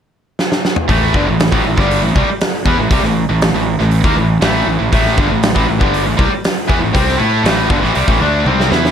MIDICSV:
0, 0, Header, 1, 6, 480
1, 0, Start_track
1, 0, Tempo, 504626
1, 847, Time_signature, 4, 2, 24, 8
1, 8479, End_track
2, 0, Start_track
2, 0, Title_t, "Distorted electric guitar"
2, 0, Program_c, 0, 30
2, 850, Note_on_c, 0, 45, 86
2, 861, Note_on_c, 0, 52, 83
2, 862, Note_on_c, 0, 57, 105
2, 1081, Note_off_c, 0, 45, 0
2, 1084, Note_on_c, 0, 43, 94
2, 1087, Note_off_c, 0, 52, 0
2, 1087, Note_off_c, 0, 57, 0
2, 1096, Note_on_c, 0, 50, 105
2, 1198, Note_off_c, 0, 43, 0
2, 1204, Note_off_c, 0, 50, 0
2, 1212, Note_on_c, 0, 45, 72
2, 1220, Note_on_c, 0, 52, 69
2, 1401, Note_off_c, 0, 45, 0
2, 1405, Note_off_c, 0, 52, 0
2, 1453, Note_on_c, 0, 45, 90
2, 1459, Note_on_c, 0, 52, 112
2, 1563, Note_off_c, 0, 45, 0
2, 1565, Note_off_c, 0, 52, 0
2, 1583, Note_on_c, 0, 52, 77
2, 1584, Note_on_c, 0, 45, 64
2, 1695, Note_off_c, 0, 52, 0
2, 1696, Note_off_c, 0, 45, 0
2, 1696, Note_on_c, 0, 43, 79
2, 1704, Note_on_c, 0, 50, 88
2, 1710, Note_on_c, 0, 55, 86
2, 1925, Note_off_c, 0, 43, 0
2, 1929, Note_off_c, 0, 50, 0
2, 1931, Note_off_c, 0, 55, 0
2, 1935, Note_on_c, 0, 45, 70
2, 1938, Note_on_c, 0, 52, 73
2, 2045, Note_off_c, 0, 45, 0
2, 2049, Note_on_c, 0, 48, 88
2, 2052, Note_off_c, 0, 52, 0
2, 2061, Note_on_c, 0, 55, 106
2, 2161, Note_off_c, 0, 48, 0
2, 2167, Note_off_c, 0, 55, 0
2, 2533, Note_on_c, 0, 52, 84
2, 2543, Note_on_c, 0, 59, 94
2, 2643, Note_off_c, 0, 52, 0
2, 2648, Note_off_c, 0, 59, 0
2, 2658, Note_on_c, 0, 45, 58
2, 2664, Note_on_c, 0, 52, 73
2, 2773, Note_off_c, 0, 45, 0
2, 2776, Note_off_c, 0, 52, 0
2, 2777, Note_on_c, 0, 48, 94
2, 2786, Note_on_c, 0, 55, 115
2, 2885, Note_off_c, 0, 48, 0
2, 2890, Note_off_c, 0, 55, 0
2, 2893, Note_on_c, 0, 45, 68
2, 2900, Note_on_c, 0, 52, 73
2, 3082, Note_off_c, 0, 45, 0
2, 3086, Note_off_c, 0, 52, 0
2, 3136, Note_on_c, 0, 45, 62
2, 3139, Note_on_c, 0, 52, 67
2, 3324, Note_off_c, 0, 45, 0
2, 3325, Note_off_c, 0, 52, 0
2, 3382, Note_on_c, 0, 52, 66
2, 3383, Note_on_c, 0, 45, 62
2, 3567, Note_off_c, 0, 45, 0
2, 3567, Note_off_c, 0, 52, 0
2, 3620, Note_on_c, 0, 45, 61
2, 3622, Note_on_c, 0, 52, 63
2, 3806, Note_off_c, 0, 45, 0
2, 3807, Note_off_c, 0, 52, 0
2, 3855, Note_on_c, 0, 51, 86
2, 3862, Note_on_c, 0, 58, 101
2, 3964, Note_off_c, 0, 51, 0
2, 3968, Note_off_c, 0, 58, 0
2, 3972, Note_on_c, 0, 45, 68
2, 3978, Note_on_c, 0, 52, 80
2, 4162, Note_off_c, 0, 45, 0
2, 4165, Note_off_c, 0, 52, 0
2, 4208, Note_on_c, 0, 45, 86
2, 4219, Note_on_c, 0, 52, 99
2, 4223, Note_on_c, 0, 57, 104
2, 4441, Note_off_c, 0, 45, 0
2, 4443, Note_off_c, 0, 52, 0
2, 4448, Note_off_c, 0, 57, 0
2, 4452, Note_on_c, 0, 45, 64
2, 4454, Note_on_c, 0, 52, 72
2, 4553, Note_off_c, 0, 45, 0
2, 4556, Note_off_c, 0, 52, 0
2, 4564, Note_on_c, 0, 45, 64
2, 4567, Note_on_c, 0, 52, 71
2, 4672, Note_off_c, 0, 45, 0
2, 4678, Note_off_c, 0, 52, 0
2, 4683, Note_on_c, 0, 45, 85
2, 4689, Note_on_c, 0, 52, 96
2, 4694, Note_on_c, 0, 57, 101
2, 4918, Note_off_c, 0, 45, 0
2, 4921, Note_off_c, 0, 52, 0
2, 4924, Note_off_c, 0, 57, 0
2, 4930, Note_on_c, 0, 43, 92
2, 4937, Note_on_c, 0, 50, 98
2, 5039, Note_off_c, 0, 50, 0
2, 5042, Note_off_c, 0, 43, 0
2, 5043, Note_on_c, 0, 45, 72
2, 5047, Note_on_c, 0, 52, 77
2, 5237, Note_off_c, 0, 45, 0
2, 5239, Note_off_c, 0, 52, 0
2, 5273, Note_on_c, 0, 45, 89
2, 5277, Note_on_c, 0, 52, 102
2, 5376, Note_off_c, 0, 45, 0
2, 5385, Note_off_c, 0, 52, 0
2, 5387, Note_on_c, 0, 45, 65
2, 5397, Note_on_c, 0, 52, 77
2, 5503, Note_on_c, 0, 43, 82
2, 5507, Note_off_c, 0, 45, 0
2, 5511, Note_off_c, 0, 52, 0
2, 5511, Note_on_c, 0, 50, 96
2, 5515, Note_on_c, 0, 55, 97
2, 5748, Note_off_c, 0, 43, 0
2, 5752, Note_off_c, 0, 50, 0
2, 5754, Note_off_c, 0, 55, 0
2, 5759, Note_on_c, 0, 45, 75
2, 5761, Note_on_c, 0, 52, 75
2, 5865, Note_off_c, 0, 45, 0
2, 5869, Note_on_c, 0, 48, 97
2, 5873, Note_off_c, 0, 52, 0
2, 5877, Note_on_c, 0, 55, 92
2, 5986, Note_off_c, 0, 48, 0
2, 5995, Note_off_c, 0, 55, 0
2, 6351, Note_on_c, 0, 52, 96
2, 6368, Note_on_c, 0, 59, 90
2, 6466, Note_off_c, 0, 52, 0
2, 6470, Note_on_c, 0, 45, 59
2, 6475, Note_off_c, 0, 59, 0
2, 6479, Note_on_c, 0, 52, 75
2, 6583, Note_off_c, 0, 45, 0
2, 6586, Note_on_c, 0, 48, 93
2, 6591, Note_off_c, 0, 52, 0
2, 6595, Note_on_c, 0, 55, 98
2, 6599, Note_on_c, 0, 60, 101
2, 6828, Note_off_c, 0, 55, 0
2, 6830, Note_off_c, 0, 48, 0
2, 6832, Note_on_c, 0, 57, 86
2, 6835, Note_off_c, 0, 60, 0
2, 6838, Note_on_c, 0, 64, 98
2, 6841, Note_on_c, 0, 69, 95
2, 7069, Note_on_c, 0, 45, 82
2, 7072, Note_off_c, 0, 57, 0
2, 7076, Note_off_c, 0, 64, 0
2, 7077, Note_off_c, 0, 69, 0
2, 7077, Note_on_c, 0, 52, 92
2, 7083, Note_on_c, 0, 57, 85
2, 7307, Note_on_c, 0, 43, 97
2, 7311, Note_off_c, 0, 45, 0
2, 7315, Note_off_c, 0, 52, 0
2, 7315, Note_on_c, 0, 50, 100
2, 7318, Note_off_c, 0, 57, 0
2, 7426, Note_off_c, 0, 50, 0
2, 7430, Note_off_c, 0, 43, 0
2, 7430, Note_on_c, 0, 45, 82
2, 7434, Note_on_c, 0, 52, 92
2, 7550, Note_off_c, 0, 45, 0
2, 7553, Note_off_c, 0, 52, 0
2, 7554, Note_on_c, 0, 48, 97
2, 7563, Note_on_c, 0, 55, 107
2, 7670, Note_off_c, 0, 48, 0
2, 7674, Note_on_c, 0, 45, 83
2, 7678, Note_off_c, 0, 55, 0
2, 7682, Note_on_c, 0, 52, 111
2, 7789, Note_off_c, 0, 45, 0
2, 7793, Note_on_c, 0, 50, 92
2, 7795, Note_off_c, 0, 52, 0
2, 7799, Note_on_c, 0, 57, 94
2, 7803, Note_on_c, 0, 62, 92
2, 8033, Note_off_c, 0, 50, 0
2, 8036, Note_off_c, 0, 57, 0
2, 8037, Note_on_c, 0, 48, 95
2, 8038, Note_off_c, 0, 62, 0
2, 8046, Note_on_c, 0, 55, 92
2, 8051, Note_on_c, 0, 60, 98
2, 8272, Note_off_c, 0, 48, 0
2, 8276, Note_on_c, 0, 52, 84
2, 8280, Note_off_c, 0, 55, 0
2, 8282, Note_off_c, 0, 60, 0
2, 8288, Note_on_c, 0, 59, 97
2, 8292, Note_on_c, 0, 64, 96
2, 8479, Note_off_c, 0, 52, 0
2, 8479, Note_off_c, 0, 59, 0
2, 8479, Note_off_c, 0, 64, 0
2, 8479, End_track
3, 0, Start_track
3, 0, Title_t, "Fingered electric bass"
3, 0, Program_c, 1, 33
3, 847, Note_on_c, 1, 33, 87
3, 1070, Note_off_c, 1, 33, 0
3, 1086, Note_on_c, 1, 31, 81
3, 1198, Note_off_c, 1, 31, 0
3, 1227, Note_on_c, 1, 33, 78
3, 1441, Note_off_c, 1, 33, 0
3, 1448, Note_on_c, 1, 33, 95
3, 1559, Note_off_c, 1, 33, 0
3, 1575, Note_on_c, 1, 33, 78
3, 1683, Note_off_c, 1, 33, 0
3, 1689, Note_on_c, 1, 31, 80
3, 1911, Note_off_c, 1, 31, 0
3, 1929, Note_on_c, 1, 33, 73
3, 2040, Note_off_c, 1, 33, 0
3, 2049, Note_on_c, 1, 36, 89
3, 2160, Note_off_c, 1, 36, 0
3, 2521, Note_on_c, 1, 40, 99
3, 2635, Note_off_c, 1, 40, 0
3, 2645, Note_on_c, 1, 33, 76
3, 2758, Note_off_c, 1, 33, 0
3, 2766, Note_on_c, 1, 36, 90
3, 2878, Note_off_c, 1, 36, 0
3, 2886, Note_on_c, 1, 33, 80
3, 3110, Note_off_c, 1, 33, 0
3, 3135, Note_on_c, 1, 33, 83
3, 3355, Note_off_c, 1, 33, 0
3, 3370, Note_on_c, 1, 33, 79
3, 3592, Note_off_c, 1, 33, 0
3, 3613, Note_on_c, 1, 33, 77
3, 3834, Note_off_c, 1, 33, 0
3, 3841, Note_on_c, 1, 39, 87
3, 3956, Note_off_c, 1, 39, 0
3, 3970, Note_on_c, 1, 33, 72
3, 4192, Note_off_c, 1, 33, 0
3, 4204, Note_on_c, 1, 33, 96
3, 4429, Note_off_c, 1, 33, 0
3, 4439, Note_on_c, 1, 33, 86
3, 4555, Note_off_c, 1, 33, 0
3, 4572, Note_on_c, 1, 33, 83
3, 4678, Note_off_c, 1, 33, 0
3, 4684, Note_on_c, 1, 33, 95
3, 4909, Note_off_c, 1, 33, 0
3, 4924, Note_on_c, 1, 31, 85
3, 5037, Note_off_c, 1, 31, 0
3, 5062, Note_on_c, 1, 33, 83
3, 5279, Note_off_c, 1, 33, 0
3, 5285, Note_on_c, 1, 33, 98
3, 5398, Note_off_c, 1, 33, 0
3, 5419, Note_on_c, 1, 33, 80
3, 5517, Note_off_c, 1, 33, 0
3, 5523, Note_on_c, 1, 31, 84
3, 5748, Note_off_c, 1, 31, 0
3, 5775, Note_on_c, 1, 33, 85
3, 5879, Note_off_c, 1, 33, 0
3, 5885, Note_on_c, 1, 36, 91
3, 5998, Note_off_c, 1, 36, 0
3, 6367, Note_on_c, 1, 40, 92
3, 6479, Note_off_c, 1, 40, 0
3, 6499, Note_on_c, 1, 33, 76
3, 6605, Note_off_c, 1, 33, 0
3, 6612, Note_on_c, 1, 36, 89
3, 6833, Note_off_c, 1, 36, 0
3, 6842, Note_on_c, 1, 45, 90
3, 7068, Note_off_c, 1, 45, 0
3, 7075, Note_on_c, 1, 33, 89
3, 7304, Note_off_c, 1, 33, 0
3, 7325, Note_on_c, 1, 31, 90
3, 7438, Note_off_c, 1, 31, 0
3, 7447, Note_on_c, 1, 33, 82
3, 7559, Note_off_c, 1, 33, 0
3, 7567, Note_on_c, 1, 36, 93
3, 7676, Note_off_c, 1, 36, 0
3, 7682, Note_on_c, 1, 33, 83
3, 7796, Note_off_c, 1, 33, 0
3, 7802, Note_on_c, 1, 38, 78
3, 8028, Note_off_c, 1, 38, 0
3, 8039, Note_on_c, 1, 36, 86
3, 8266, Note_off_c, 1, 36, 0
3, 8288, Note_on_c, 1, 40, 106
3, 8479, Note_off_c, 1, 40, 0
3, 8479, End_track
4, 0, Start_track
4, 0, Title_t, "Muted distorted electric guitar strokes"
4, 2176, Note_on_c, 9, 29, 61
4, 2271, Note_off_c, 9, 29, 0
4, 5989, Note_on_c, 9, 29, 60
4, 6084, Note_off_c, 9, 29, 0
4, 8479, End_track
5, 0, Start_track
5, 0, Title_t, "Muted fingered electric bass strokes"
5, 2166, Note_on_c, 9, 29, 43
5, 2261, Note_off_c, 9, 29, 0
5, 6021, Note_on_c, 9, 29, 41
5, 6116, Note_off_c, 9, 29, 0
5, 8479, End_track
6, 0, Start_track
6, 0, Title_t, "Drums"
6, 371, Note_on_c, 9, 38, 69
6, 466, Note_off_c, 9, 38, 0
6, 493, Note_on_c, 9, 38, 76
6, 588, Note_off_c, 9, 38, 0
6, 616, Note_on_c, 9, 38, 82
6, 711, Note_off_c, 9, 38, 0
6, 725, Note_on_c, 9, 45, 102
6, 820, Note_off_c, 9, 45, 0
6, 847, Note_on_c, 9, 36, 108
6, 849, Note_on_c, 9, 46, 55
6, 942, Note_off_c, 9, 36, 0
6, 945, Note_off_c, 9, 46, 0
6, 1086, Note_on_c, 9, 36, 97
6, 1182, Note_off_c, 9, 36, 0
6, 1328, Note_on_c, 9, 46, 63
6, 1338, Note_on_c, 9, 38, 119
6, 1424, Note_off_c, 9, 46, 0
6, 1433, Note_off_c, 9, 38, 0
6, 1449, Note_on_c, 9, 36, 99
6, 1544, Note_off_c, 9, 36, 0
6, 1689, Note_on_c, 9, 36, 100
6, 1703, Note_on_c, 9, 38, 33
6, 1784, Note_off_c, 9, 36, 0
6, 1798, Note_off_c, 9, 38, 0
6, 1816, Note_on_c, 9, 46, 58
6, 1911, Note_off_c, 9, 46, 0
6, 2052, Note_on_c, 9, 36, 98
6, 2147, Note_off_c, 9, 36, 0
6, 2288, Note_on_c, 9, 46, 59
6, 2297, Note_on_c, 9, 38, 109
6, 2383, Note_off_c, 9, 46, 0
6, 2393, Note_off_c, 9, 38, 0
6, 2526, Note_on_c, 9, 36, 99
6, 2621, Note_off_c, 9, 36, 0
6, 2766, Note_on_c, 9, 36, 106
6, 2767, Note_on_c, 9, 46, 58
6, 2861, Note_off_c, 9, 36, 0
6, 2862, Note_off_c, 9, 46, 0
6, 2889, Note_on_c, 9, 38, 31
6, 2984, Note_off_c, 9, 38, 0
6, 3247, Note_on_c, 9, 46, 54
6, 3256, Note_on_c, 9, 38, 115
6, 3342, Note_off_c, 9, 46, 0
6, 3352, Note_off_c, 9, 38, 0
6, 3608, Note_on_c, 9, 38, 34
6, 3703, Note_off_c, 9, 38, 0
6, 3719, Note_on_c, 9, 46, 49
6, 3815, Note_off_c, 9, 46, 0
6, 3844, Note_on_c, 9, 36, 99
6, 3939, Note_off_c, 9, 36, 0
6, 4198, Note_on_c, 9, 46, 51
6, 4207, Note_on_c, 9, 38, 112
6, 4293, Note_off_c, 9, 46, 0
6, 4302, Note_off_c, 9, 38, 0
6, 4685, Note_on_c, 9, 46, 57
6, 4686, Note_on_c, 9, 36, 105
6, 4780, Note_off_c, 9, 46, 0
6, 4781, Note_off_c, 9, 36, 0
6, 4807, Note_on_c, 9, 38, 31
6, 4903, Note_off_c, 9, 38, 0
6, 4925, Note_on_c, 9, 36, 106
6, 5020, Note_off_c, 9, 36, 0
6, 5162, Note_on_c, 9, 46, 63
6, 5171, Note_on_c, 9, 38, 115
6, 5257, Note_off_c, 9, 46, 0
6, 5266, Note_off_c, 9, 38, 0
6, 5287, Note_on_c, 9, 36, 96
6, 5382, Note_off_c, 9, 36, 0
6, 5526, Note_on_c, 9, 36, 104
6, 5622, Note_off_c, 9, 36, 0
6, 5649, Note_on_c, 9, 46, 55
6, 5744, Note_off_c, 9, 46, 0
6, 5887, Note_on_c, 9, 36, 101
6, 5982, Note_off_c, 9, 36, 0
6, 6127, Note_on_c, 9, 46, 58
6, 6137, Note_on_c, 9, 38, 100
6, 6222, Note_off_c, 9, 46, 0
6, 6232, Note_off_c, 9, 38, 0
6, 6368, Note_on_c, 9, 36, 99
6, 6463, Note_off_c, 9, 36, 0
6, 6608, Note_on_c, 9, 36, 108
6, 6614, Note_on_c, 9, 46, 57
6, 6703, Note_off_c, 9, 36, 0
6, 6710, Note_off_c, 9, 46, 0
6, 6739, Note_on_c, 9, 38, 34
6, 6834, Note_off_c, 9, 38, 0
6, 7088, Note_on_c, 9, 46, 58
6, 7097, Note_on_c, 9, 38, 112
6, 7183, Note_off_c, 9, 46, 0
6, 7192, Note_off_c, 9, 38, 0
6, 7325, Note_on_c, 9, 36, 106
6, 7420, Note_off_c, 9, 36, 0
6, 7461, Note_on_c, 9, 38, 32
6, 7556, Note_off_c, 9, 38, 0
6, 7561, Note_on_c, 9, 46, 55
6, 7657, Note_off_c, 9, 46, 0
6, 7685, Note_on_c, 9, 36, 103
6, 7780, Note_off_c, 9, 36, 0
6, 8050, Note_on_c, 9, 48, 60
6, 8145, Note_off_c, 9, 48, 0
6, 8180, Note_on_c, 9, 38, 62
6, 8275, Note_off_c, 9, 38, 0
6, 8293, Note_on_c, 9, 38, 84
6, 8388, Note_off_c, 9, 38, 0
6, 8419, Note_on_c, 9, 38, 78
6, 8479, Note_off_c, 9, 38, 0
6, 8479, End_track
0, 0, End_of_file